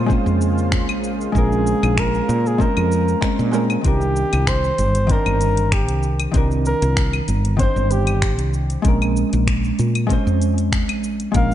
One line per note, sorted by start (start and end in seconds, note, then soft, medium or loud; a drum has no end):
0.00 0.17 A#2 loud
0.00 3.81 C#3 medium
0.00 3.81 G#3 medium
0.00 3.81 A#3 medium
0.00 3.81 F4 medium
0.00 3.81 C5 medium
0.06 1.30 G#3 medium
0.06 1.31 C4 medium
0.06 1.32 C#4 medium
0.06 kick medium
0.06 shaker soft
0.12 1.32 C5 medium
0.26 0.89 F2 medium
0.26 shaker soft
0.41 shaker medium
0.58 shaker soft
0.72 finger snap loud
0.72 kick medium
0.72 shaker soft
0.89 1.26 A#1 medium
0.89 claves medium
0.89 shaker soft
1.04 shaker medium
1.21 shaker soft
1.32 1.73 A#1 medium
1.32 2.55 G#3 medium
1.32 2.56 C4 medium
1.32 2.57 C#4 medium
1.32 kick loud
1.32 shaker soft
1.37 2.01 G#4 loud
1.37 2.58 A#4 medium
1.52 shaker soft
1.67 shaker medium
1.83 2.20 A#1 loud
1.83 claves medium
1.83 shaker soft
1.97 2.49 A#4 loud
1.97 finger snap loud
1.97 kick medium
1.97 shaker soft
2.15 shaker soft
2.29 2.67 A#2 medium
2.29 shaker medium
2.46 2.63 G#4 loud
2.46 shaker soft
2.58 3.19 G#3 medium
2.58 3.19 C4 medium
2.58 3.20 C#4 medium
2.58 3.55 A#4 loud
2.58 3.20 C5 medium
2.58 kick medium
2.58 shaker soft
2.77 3.14 F2 medium
2.77 claves medium
2.77 shaker soft
2.92 shaker medium
3.08 shaker soft
3.21 3.49 G#3 medium
3.21 3.50 C4 medium
3.21 3.50 C#4 medium
3.21 3.51 C5 medium
3.21 finger snap loud
3.21 kick medium
3.21 shaker soft
3.39 3.76 A#2 medium
3.39 shaker soft
3.51 3.80 G#3 loud
3.51 3.81 C4 medium
3.51 3.81 C#4 medium
3.51 3.82 A#4 loud
3.51 shaker medium
3.70 claves medium
3.70 shaker soft
3.81 4.23 C2 loud
3.81 5.05 D#3 medium
3.81 5.06 C4 medium
3.81 kick loud
3.81 closed hi-hat medium
3.81 shaker soft
3.86 5.07 D4 medium
3.86 4.50 G4 loud
3.86 5.08 A#4 medium
4.01 shaker soft
4.16 shaker medium
4.33 4.70 C2 loud
4.33 closed hi-hat soft
4.33 claves medium
4.33 shaker soft
4.47 5.13 C5 loud
4.47 finger snap loud
4.47 kick medium
4.47 closed hi-hat medium
4.47 shaker soft
4.64 shaker soft
4.78 5.16 G1 medium
4.78 closed hi-hat soft
4.78 shaker medium
4.95 closed hi-hat medium
4.95 shaker soft
5.07 6.30 D#3 medium
5.07 6.31 C4 medium
5.07 6.32 D4 medium
5.07 kick loud
5.07 closed hi-hat medium
5.07 shaker soft
5.12 5.75 A#4 loud
5.12 6.33 C5 medium
5.26 5.89 G1 medium
5.26 claves medium
5.26 shaker soft
5.41 closed hi-hat soft
5.41 shaker medium
5.57 closed hi-hat soft
5.57 shaker soft
5.72 6.21 G4 medium
5.72 finger snap loud
5.72 kick loud
5.72 closed hi-hat medium
5.72 shaker soft
5.89 6.26 C2 medium
5.89 closed hi-hat medium
5.89 shaker soft
6.03 shaker medium
6.20 closed hi-hat soft
6.20 claves medium
6.20 shaker soft
6.32 6.73 C2 loud
6.32 7.55 D#3 medium
6.32 7.56 C4 medium
6.32 7.57 D4 medium
6.32 kick loud
6.32 closed hi-hat medium
6.32 shaker soft
6.37 7.58 A#4 medium
6.51 shaker soft
6.66 7.25 A#4 loud
6.66 shaker medium
6.82 7.20 C2 loud
6.82 closed hi-hat soft
6.82 shaker soft
6.97 finger snap loud
6.97 kick loud
6.97 closed hi-hat medium
6.97 shaker soft
7.13 claves medium
7.13 shaker soft
7.28 7.66 G1 medium
7.28 closed hi-hat soft
7.28 shaker medium
7.45 closed hi-hat soft
7.45 shaker soft
7.57 8.80 D#3 medium
7.57 8.81 C4 medium
7.57 8.82 D4 medium
7.57 7.93 C5 loud
7.57 kick loud
7.57 closed hi-hat medium
7.57 shaker soft
7.63 8.83 C5 loud
7.76 8.39 G1 medium
7.76 shaker soft
7.91 8.54 G4 loud
7.91 closed hi-hat soft
7.91 shaker medium
8.07 closed hi-hat soft
8.07 claves medium
8.07 shaker soft
8.22 finger snap medium
8.22 kick loud
8.22 closed hi-hat medium
8.22 shaker soft
8.39 8.76 C2 medium
8.39 closed hi-hat medium
8.39 shaker soft
8.54 shaker medium
8.70 closed hi-hat soft
8.70 shaker soft
8.82 9.23 A#1 loud
8.82 10.05 G#3 medium
8.82 10.06 C4 medium
8.82 kick loud
8.82 closed hi-hat medium
8.82 shaker soft
8.86 10.07 C#4 medium
8.86 10.08 A#4 medium
9.02 claves medium
9.02 shaker soft
9.17 shaker medium
9.33 9.70 A#1 medium
9.33 closed hi-hat soft
9.33 shaker soft
9.47 finger snap loud
9.47 kick loud
9.47 closed hi-hat medium
9.47 shaker soft
9.64 shaker soft
9.79 10.17 A#2 medium
9.79 closed hi-hat soft
9.79 shaker medium
9.95 closed hi-hat soft
9.95 claves medium
9.95 shaker soft
10.07 11.30 G#3 medium
10.07 11.31 C4 medium
10.07 11.32 C#4 medium
10.07 kick loud
10.07 closed hi-hat medium
10.07 shaker soft
10.13 11.33 C5 medium
10.27 10.89 F2 medium
10.27 shaker soft
10.42 closed hi-hat soft
10.42 shaker medium
10.58 closed hi-hat soft
10.58 shaker soft
10.72 finger snap medium
10.72 kick loud
10.72 closed hi-hat medium
10.72 shaker soft
10.89 11.26 A#1 medium
10.89 closed hi-hat medium
10.89 claves medium
10.89 shaker soft
11.04 shaker medium
11.20 closed hi-hat soft
11.20 shaker soft
11.32 11.54 A#1 loud
11.32 11.54 G#3 medium
11.32 11.54 A#3 medium
11.32 11.54 C#4 medium
11.32 kick loud
11.32 closed hi-hat medium
11.32 shaker soft
11.36 11.54 A#4 medium
11.36 11.54 F5 loud